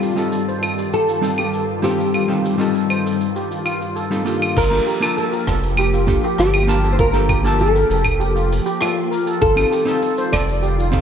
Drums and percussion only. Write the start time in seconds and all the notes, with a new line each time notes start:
0.03 shaker
0.17 shaker
0.32 shaker
0.49 shaker
0.63 claves, shaker
0.78 shaker
0.93 shaker
1.09 shaker
1.24 shaker
1.38 claves, shaker
1.54 shaker
1.84 shaker
2.00 shaker
2.14 claves, shaker
2.45 shaker
2.61 shaker
2.75 shaker
2.90 claves, shaker
3.07 shaker
3.21 shaker
3.36 shaker
3.51 shaker
3.66 claves, shaker
3.82 shaker
3.97 shaker
4.12 shaker
4.27 shaker
4.42 claves, shaker
4.56 kick, crash, shaker
4.87 shaker
5.03 claves, shaker
5.18 shaker
5.33 shaker
5.47 kick, cross-stick, shaker
5.63 shaker
5.77 claves, shaker
5.94 shaker
6.08 kick, shaker
6.24 shaker
6.38 cross-stick, shaker
6.54 claves
6.70 shaker
6.85 shaker
6.99 kick, shaker
7.29 kick, claves, shaker
7.45 shaker
7.60 shaker
7.76 shaker
7.91 shaker
8.05 kick, claves, shaker
8.21 shaker
8.37 shaker
8.52 shaker
8.66 shaker
8.81 cross-stick, claves, shaker
9.13 shaker
9.27 shaker
9.42 kick, shaker
9.57 claves
9.72 shaker
9.88 shaker
10.03 shaker
10.18 shaker
10.33 kick, cross-stick, claves, shaker
10.49 shaker
10.63 shaker
10.80 shaker
10.93 kick, shaker